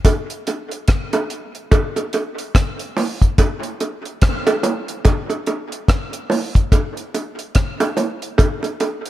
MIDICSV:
0, 0, Header, 1, 2, 480
1, 0, Start_track
1, 0, Tempo, 833333
1, 27, Time_signature, 4, 2, 24, 8
1, 5240, End_track
2, 0, Start_track
2, 0, Title_t, "Drums"
2, 27, Note_on_c, 9, 36, 102
2, 27, Note_on_c, 9, 42, 105
2, 31, Note_on_c, 9, 60, 81
2, 84, Note_off_c, 9, 42, 0
2, 85, Note_off_c, 9, 36, 0
2, 89, Note_off_c, 9, 60, 0
2, 172, Note_on_c, 9, 42, 54
2, 230, Note_off_c, 9, 42, 0
2, 270, Note_on_c, 9, 42, 76
2, 274, Note_on_c, 9, 60, 50
2, 327, Note_off_c, 9, 42, 0
2, 331, Note_off_c, 9, 60, 0
2, 411, Note_on_c, 9, 42, 53
2, 469, Note_off_c, 9, 42, 0
2, 505, Note_on_c, 9, 42, 91
2, 509, Note_on_c, 9, 36, 121
2, 512, Note_on_c, 9, 37, 115
2, 562, Note_off_c, 9, 42, 0
2, 567, Note_off_c, 9, 36, 0
2, 569, Note_off_c, 9, 37, 0
2, 650, Note_on_c, 9, 42, 56
2, 652, Note_on_c, 9, 60, 76
2, 708, Note_off_c, 9, 42, 0
2, 710, Note_off_c, 9, 60, 0
2, 749, Note_on_c, 9, 42, 70
2, 807, Note_off_c, 9, 42, 0
2, 892, Note_on_c, 9, 42, 48
2, 949, Note_off_c, 9, 42, 0
2, 988, Note_on_c, 9, 60, 94
2, 989, Note_on_c, 9, 42, 86
2, 990, Note_on_c, 9, 36, 126
2, 1045, Note_off_c, 9, 60, 0
2, 1047, Note_off_c, 9, 36, 0
2, 1047, Note_off_c, 9, 42, 0
2, 1130, Note_on_c, 9, 60, 55
2, 1133, Note_on_c, 9, 42, 55
2, 1188, Note_off_c, 9, 60, 0
2, 1191, Note_off_c, 9, 42, 0
2, 1226, Note_on_c, 9, 42, 77
2, 1233, Note_on_c, 9, 60, 59
2, 1284, Note_off_c, 9, 42, 0
2, 1290, Note_off_c, 9, 60, 0
2, 1373, Note_on_c, 9, 42, 59
2, 1431, Note_off_c, 9, 42, 0
2, 1468, Note_on_c, 9, 36, 119
2, 1468, Note_on_c, 9, 42, 97
2, 1473, Note_on_c, 9, 37, 119
2, 1525, Note_off_c, 9, 36, 0
2, 1526, Note_off_c, 9, 42, 0
2, 1531, Note_off_c, 9, 37, 0
2, 1610, Note_on_c, 9, 42, 56
2, 1667, Note_off_c, 9, 42, 0
2, 1709, Note_on_c, 9, 61, 72
2, 1714, Note_on_c, 9, 46, 63
2, 1766, Note_off_c, 9, 61, 0
2, 1771, Note_off_c, 9, 46, 0
2, 1852, Note_on_c, 9, 36, 76
2, 1855, Note_on_c, 9, 42, 56
2, 1910, Note_off_c, 9, 36, 0
2, 1912, Note_off_c, 9, 42, 0
2, 1948, Note_on_c, 9, 42, 101
2, 1949, Note_on_c, 9, 36, 101
2, 1951, Note_on_c, 9, 60, 81
2, 2006, Note_off_c, 9, 36, 0
2, 2006, Note_off_c, 9, 42, 0
2, 2008, Note_off_c, 9, 60, 0
2, 2092, Note_on_c, 9, 42, 52
2, 2150, Note_off_c, 9, 42, 0
2, 2191, Note_on_c, 9, 42, 73
2, 2193, Note_on_c, 9, 60, 48
2, 2249, Note_off_c, 9, 42, 0
2, 2250, Note_off_c, 9, 60, 0
2, 2335, Note_on_c, 9, 42, 48
2, 2393, Note_off_c, 9, 42, 0
2, 2428, Note_on_c, 9, 42, 96
2, 2431, Note_on_c, 9, 36, 125
2, 2435, Note_on_c, 9, 37, 107
2, 2486, Note_off_c, 9, 42, 0
2, 2489, Note_off_c, 9, 36, 0
2, 2493, Note_off_c, 9, 37, 0
2, 2573, Note_on_c, 9, 42, 56
2, 2573, Note_on_c, 9, 60, 84
2, 2631, Note_off_c, 9, 42, 0
2, 2631, Note_off_c, 9, 60, 0
2, 2668, Note_on_c, 9, 61, 71
2, 2670, Note_on_c, 9, 42, 68
2, 2726, Note_off_c, 9, 61, 0
2, 2728, Note_off_c, 9, 42, 0
2, 2813, Note_on_c, 9, 42, 49
2, 2871, Note_off_c, 9, 42, 0
2, 2907, Note_on_c, 9, 60, 88
2, 2910, Note_on_c, 9, 42, 90
2, 2911, Note_on_c, 9, 36, 124
2, 2964, Note_off_c, 9, 60, 0
2, 2968, Note_off_c, 9, 42, 0
2, 2969, Note_off_c, 9, 36, 0
2, 3050, Note_on_c, 9, 60, 54
2, 3055, Note_on_c, 9, 42, 51
2, 3108, Note_off_c, 9, 60, 0
2, 3112, Note_off_c, 9, 42, 0
2, 3148, Note_on_c, 9, 42, 66
2, 3152, Note_on_c, 9, 60, 64
2, 3205, Note_off_c, 9, 42, 0
2, 3210, Note_off_c, 9, 60, 0
2, 3296, Note_on_c, 9, 42, 61
2, 3353, Note_off_c, 9, 42, 0
2, 3389, Note_on_c, 9, 36, 104
2, 3391, Note_on_c, 9, 42, 90
2, 3395, Note_on_c, 9, 37, 112
2, 3447, Note_off_c, 9, 36, 0
2, 3448, Note_off_c, 9, 42, 0
2, 3453, Note_off_c, 9, 37, 0
2, 3532, Note_on_c, 9, 42, 57
2, 3589, Note_off_c, 9, 42, 0
2, 3627, Note_on_c, 9, 61, 77
2, 3637, Note_on_c, 9, 46, 62
2, 3685, Note_off_c, 9, 61, 0
2, 3695, Note_off_c, 9, 46, 0
2, 3774, Note_on_c, 9, 36, 78
2, 3778, Note_on_c, 9, 42, 54
2, 3832, Note_off_c, 9, 36, 0
2, 3836, Note_off_c, 9, 42, 0
2, 3870, Note_on_c, 9, 36, 105
2, 3871, Note_on_c, 9, 60, 76
2, 3872, Note_on_c, 9, 42, 98
2, 3928, Note_off_c, 9, 36, 0
2, 3928, Note_off_c, 9, 60, 0
2, 3929, Note_off_c, 9, 42, 0
2, 4015, Note_on_c, 9, 42, 53
2, 4073, Note_off_c, 9, 42, 0
2, 4115, Note_on_c, 9, 60, 50
2, 4116, Note_on_c, 9, 42, 65
2, 4173, Note_off_c, 9, 42, 0
2, 4173, Note_off_c, 9, 60, 0
2, 4256, Note_on_c, 9, 42, 54
2, 4313, Note_off_c, 9, 42, 0
2, 4347, Note_on_c, 9, 42, 92
2, 4352, Note_on_c, 9, 36, 126
2, 4355, Note_on_c, 9, 37, 106
2, 4405, Note_off_c, 9, 42, 0
2, 4410, Note_off_c, 9, 36, 0
2, 4412, Note_off_c, 9, 37, 0
2, 4494, Note_on_c, 9, 60, 82
2, 4495, Note_on_c, 9, 42, 57
2, 4552, Note_off_c, 9, 60, 0
2, 4553, Note_off_c, 9, 42, 0
2, 4589, Note_on_c, 9, 61, 68
2, 4593, Note_on_c, 9, 42, 65
2, 4647, Note_off_c, 9, 61, 0
2, 4650, Note_off_c, 9, 42, 0
2, 4736, Note_on_c, 9, 42, 53
2, 4793, Note_off_c, 9, 42, 0
2, 4827, Note_on_c, 9, 60, 90
2, 4833, Note_on_c, 9, 36, 118
2, 4834, Note_on_c, 9, 42, 85
2, 4884, Note_off_c, 9, 60, 0
2, 4890, Note_off_c, 9, 36, 0
2, 4891, Note_off_c, 9, 42, 0
2, 4969, Note_on_c, 9, 60, 52
2, 4977, Note_on_c, 9, 42, 53
2, 5027, Note_off_c, 9, 60, 0
2, 5035, Note_off_c, 9, 42, 0
2, 5069, Note_on_c, 9, 42, 70
2, 5072, Note_on_c, 9, 60, 63
2, 5127, Note_off_c, 9, 42, 0
2, 5129, Note_off_c, 9, 60, 0
2, 5216, Note_on_c, 9, 42, 60
2, 5240, Note_off_c, 9, 42, 0
2, 5240, End_track
0, 0, End_of_file